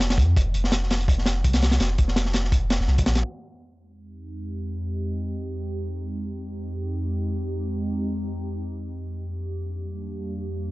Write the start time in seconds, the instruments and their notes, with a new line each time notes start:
Already playing: sub bass F1
0.00 snare, closed hi-hat
0.10 snare, closed hi-hat
0.18 sub bass F2, kick, closed hi-hat
0.36 sub bass F1, kick, closed hi-hat
0.54 sub bass F1, closed hi-hat
0.64 snare
0.72 snare, closed hi-hat
0.83 snare
0.91 snare, closed hi-hat
1.01 closed hi-hat
1.08 kick, closed hi-hat
1.18 snare
1.26 snare, closed hi-hat
1.44 sub bass C2, kick, closed hi-hat
1.53 snare, closed hi-hat
1.62 snare, closed hi-hat
1.71 snare, closed hi-hat
1.80 sub bass F1, snare, closed hi-hat
1.98 sub bass F1, kick, closed hi-hat
2.08 snare
2.16 snare, closed hi-hat
2.25 snare
2.33 snare, closed hi-hat
2.44 snare
2.52 kick, closed hi-hat
2.70 snare, closed hi-hat
2.80 sub bass F1, snare
2.87 sub bass C2, snare
2.98 kick, closed hi-hat
3.06 sub bass A#1, snare, closed hi-hat
3.15 snare, closed hi-hat
3.24 ambient pad F2 G#3 C4 D#4 G4
6.11 ambient pad F2 G#3 C4 D#4 G4
8.99 ambient pad F2 G3 A#3 D4 G4